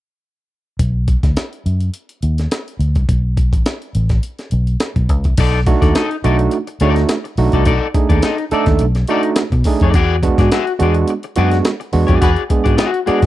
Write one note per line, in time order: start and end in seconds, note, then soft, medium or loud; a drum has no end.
0.79 1.14 B1 medium
0.79 kick medium
0.79 closed hi-hat medium
1.08 kick medium
1.08 closed hi-hat medium
1.23 1.34 D2 medium
1.23 kick medium
1.23 snare soft
1.23 closed hi-hat soft
1.37 snare loud
1.37 closed hi-hat medium
1.53 closed hi-hat soft
1.66 1.89 F#2 medium
1.66 closed hi-hat medium
1.80 closed hi-hat medium
1.94 closed hi-hat medium
2.09 closed hi-hat soft
2.22 2.46 D#2 medium
2.22 closed hi-hat medium
2.38 snare soft
2.38 closed hi-hat soft
2.51 snare loud
2.51 closed hi-hat medium
2.68 closed hi-hat soft
2.79 2.96 D2 medium
2.79 closed hi-hat medium
2.95 3.06 C2 medium
2.95 kick medium
2.95 closed hi-hat soft
3.09 3.53 B1 medium
3.09 kick loud
3.09 closed hi-hat medium
3.37 kick medium
3.37 closed hi-hat medium
3.53 3.63 A1 medium
3.53 kick medium
3.53 closed hi-hat medium
3.66 snare loud
3.66 closed hi-hat medium
3.82 closed hi-hat soft
3.95 4.18 A1 medium
3.95 closed hi-hat medium
4.09 kick medium
4.09 snare soft
4.09 closed hi-hat soft
4.23 closed hi-hat medium
4.39 snare soft
4.39 closed hi-hat soft
4.51 4.75 B1 medium
4.51 closed hi-hat medium
4.67 closed hi-hat soft
4.80 snare loud
4.80 closed hi-hat medium
4.96 5.09 B1 medium
4.96 kick medium
4.96 closed hi-hat soft
5.09 5.25 C#2 medium
5.09 kick medium
5.09 closed hi-hat medium
5.24 5.36 C2 medium
5.24 kick medium
5.24 closed hi-hat soft
5.38 5.73 B1 medium
5.38 5.58 D#4 medium
5.38 5.59 A4 medium
5.38 5.59 D5 medium
5.38 kick loud
5.38 closed hi-hat medium
5.38 crash loud
5.66 6.00 A3 medium
5.66 6.00 D4 medium
5.66 6.00 D#4 medium
5.66 6.00 F#4 loud
5.66 muted clean electric guitar stroke soft
5.66 kick medium
5.66 closed hi-hat medium
5.81 5.92 D#2 medium
5.81 5.95 D#4 soft
5.81 5.95 A4 medium
5.81 5.96 D5 medium
5.81 kick medium
5.81 snare soft
5.81 closed hi-hat medium
5.95 6.16 D#4 medium
5.95 6.11 A4 medium
5.95 6.11 D#5 medium
5.95 snare loud
5.95 closed hi-hat medium
6.11 muted clean electric guitar stroke soft
6.11 closed hi-hat soft
6.24 6.47 B1 medium
6.24 6.57 A3 medium
6.24 6.57 D4 medium
6.24 6.57 D#4 medium
6.24 6.40 D#4 medium
6.24 6.57 F#4 loud
6.24 6.39 A4 medium
6.24 6.38 D5 medium
6.24 closed hi-hat medium
6.39 muted clean electric guitar stroke soft
6.39 closed hi-hat medium
6.51 muted clean electric guitar stroke soft
6.51 closed hi-hat medium
6.67 muted clean electric guitar stroke soft
6.67 closed hi-hat soft
6.80 7.03 D2 medium
6.80 7.14 A3 medium
6.80 7.14 D4 medium
6.80 7.01 D#4 medium
6.80 7.14 D#4 medium
6.80 7.14 F#4 medium
6.80 6.96 A4 medium
6.80 6.95 D5 medium
6.80 closed hi-hat medium
6.96 muted clean electric guitar stroke soft
6.96 snare soft
6.96 closed hi-hat soft
7.09 muted clean electric guitar stroke soft
7.09 snare loud
7.09 closed hi-hat medium
7.24 muted clean electric guitar stroke soft
7.24 closed hi-hat soft
7.37 7.50 B1 medium
7.37 7.71 A3 medium
7.37 7.71 D4 medium
7.37 7.71 D#4 medium
7.37 7.71 F#4 medium
7.37 open hi-hat medium
7.52 7.66 C2 medium
7.52 7.65 D#4 medium
7.52 7.65 A4 medium
7.52 7.66 D5 medium
7.52 kick medium
7.52 closed hi-hat soft
7.66 7.78 B1 medium
7.66 7.86 D#4 medium
7.66 7.86 A4 loud
7.66 7.87 D5 medium
7.66 kick loud
7.66 closed hi-hat medium
7.94 8.28 A3 medium
7.94 8.27 D4 medium
7.94 8.27 D#4 medium
7.94 8.28 G#4 medium
7.94 muted clean electric guitar stroke soft
7.94 kick loud
7.94 closed hi-hat medium
8.09 8.20 D#2 medium
8.09 8.22 D#4 medium
8.09 8.23 A4 medium
8.09 8.24 D5 medium
8.09 kick medium
8.09 closed hi-hat soft
8.22 8.44 D#4 medium
8.22 8.38 A4 medium
8.22 8.38 D#5 medium
8.22 snare loud
8.22 closed hi-hat medium
8.38 muted clean electric guitar stroke soft
8.38 closed hi-hat soft
8.51 8.85 A3 medium
8.51 8.85 D4 medium
8.51 8.85 D#4 medium
8.51 8.68 D#4 medium
8.51 8.85 A4 medium
8.51 8.67 A4 medium
8.51 8.66 D5 medium
8.51 muted fingered electric bass stroke soft
8.51 closed hi-hat medium
8.66 8.77 D#2 medium
8.66 muted clean electric guitar stroke soft
8.66 kick loud
8.66 snare soft
8.66 closed hi-hat medium
8.79 9.03 B1 medium
8.79 muted clean electric guitar stroke soft
8.79 closed hi-hat medium
8.95 muted clean electric guitar stroke soft
8.95 snare soft
8.95 closed hi-hat soft
9.07 9.42 A3 medium
9.07 9.42 D4 medium
9.07 9.42 D#4 medium
9.07 9.29 D#4 medium
9.07 9.41 F#4 medium
9.07 9.24 A4 medium
9.07 9.23 D5 medium
9.07 closed hi-hat medium
9.23 muted clean electric guitar stroke medium
9.23 closed hi-hat soft
9.36 muted clean electric guitar stroke soft
9.36 snare loud
9.36 closed hi-hat loud
9.52 9.63 B2 loud
9.52 muted clean electric guitar stroke soft
9.52 kick medium
9.52 closed hi-hat soft
9.64 9.94 A3 medium
9.64 9.94 D4 medium
9.64 9.94 D#4 medium
9.64 9.95 G#4 medium
9.64 kick medium
9.64 open hi-hat medium
9.80 9.94 F2 medium
9.80 9.95 A4 medium
9.80 9.95 D5 medium
9.80 kick medium
9.80 closed hi-hat soft
9.84 9.94 D#4 medium
9.94 10.29 E2 medium
9.94 10.15 F#4 medium
9.94 10.15 G#4 loud
9.94 10.15 D5 loud
9.94 kick loud
9.94 closed hi-hat medium
10.23 10.56 G#3 medium
10.23 10.56 B3 medium
10.23 10.56 D4 medium
10.23 10.56 F#4 medium
10.23 muted clean electric guitar stroke soft
10.23 kick medium
10.23 closed hi-hat medium
10.38 10.49 G#2 medium
10.38 10.51 F#4 medium
10.38 10.51 G#4 medium
10.38 10.53 D5 medium
10.38 kick medium
10.38 snare soft
10.38 closed hi-hat medium
10.52 10.72 F#4 medium
10.52 10.67 G#4 medium
10.52 10.67 E5 medium
10.52 snare loud
10.52 closed hi-hat medium
10.67 muted clean electric guitar stroke soft
10.67 closed hi-hat soft
10.79 11.03 E2 loud
10.79 11.12 G#3 medium
10.79 11.12 B3 medium
10.79 11.12 D4 medium
10.79 11.12 F#4 loud
10.79 10.97 F#4 medium
10.79 10.96 G#4 medium
10.79 10.95 D5 medium
10.79 closed hi-hat medium
10.94 muted clean electric guitar stroke soft
10.94 closed hi-hat medium
11.08 muted clean electric guitar stroke soft
11.08 closed hi-hat medium
11.23 muted clean electric guitar stroke soft
11.23 closed hi-hat soft
11.36 11.60 F#2 medium
11.36 11.69 G#3 medium
11.36 11.70 B3 medium
11.36 11.70 D4 medium
11.36 11.69 F#4 loud
11.36 11.57 F#4 medium
11.36 11.52 G#4 medium
11.36 11.51 D5 medium
11.36 closed hi-hat medium
11.51 muted clean electric guitar stroke medium
11.51 snare soft
11.51 closed hi-hat soft
11.65 muted clean electric guitar stroke soft
11.65 snare loud
11.65 closed hi-hat medium
11.80 muted clean electric guitar stroke medium
11.80 closed hi-hat soft
11.93 12.06 E2 medium
11.93 12.26 G#3 medium
11.93 12.26 B3 medium
11.93 12.26 D4 medium
11.93 12.26 F#4 medium
11.93 open hi-hat medium
12.07 12.20 F2 medium
12.07 12.20 F#4 medium
12.07 12.20 G#4 medium
12.07 12.21 D5 medium
12.07 kick medium
12.07 closed hi-hat soft
12.21 12.34 E2 medium
12.21 12.42 F#4 medium
12.21 12.31 F#4 medium
12.21 12.42 G#4 medium
12.21 12.31 G#4 medium
12.21 12.31 B4 medium
12.21 12.42 D5 medium
12.21 kick loud
12.21 closed hi-hat medium
12.36 closed hi-hat soft
12.49 12.84 G#3 medium
12.49 12.84 B3 medium
12.49 12.84 D4 medium
12.49 12.84 G#4 medium
12.49 muted clean electric guitar stroke soft
12.49 kick medium
12.49 closed hi-hat medium
12.64 12.76 G#2 medium
12.64 12.76 F#4 medium
12.64 12.77 G#4 medium
12.64 12.78 D5 medium
12.64 kick medium
12.64 closed hi-hat medium
12.77 12.99 F#4 medium
12.77 12.92 G#4 medium
12.77 12.93 E5 medium
12.77 snare loud
12.77 closed hi-hat medium
12.93 muted clean electric guitar stroke soft
12.93 closed hi-hat soft
13.06 13.26 G#3 medium
13.06 13.26 B3 medium
13.06 13.26 D4 medium
13.06 13.23 F#4 medium
13.06 13.22 G#4 medium
13.06 13.26 G#4 medium
13.06 13.26 D5 medium
13.06 13.21 D5 medium
13.06 muted fingered electric bass stroke soft
13.06 closed hi-hat medium
13.22 13.26 G#2 medium
13.22 muted clean electric guitar stroke soft
13.22 kick medium
13.22 snare soft
13.22 closed hi-hat medium